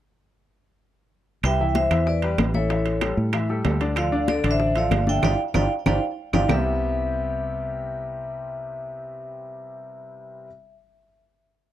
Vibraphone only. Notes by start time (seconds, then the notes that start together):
1.45 E5 G5
1.76 C5 E5
2.08 B4 D5
2.55 A4 C#5
3.98 D5 F5
4.29 A4 D5
4.51 C5 E5
4.77 D5 F5
5.09 E5 G5
5.24 D5 F5 G5
5.55 D5 F5 G5
5.87 D5 F5 G5
6.34 D5 F5 G5
6.51 E5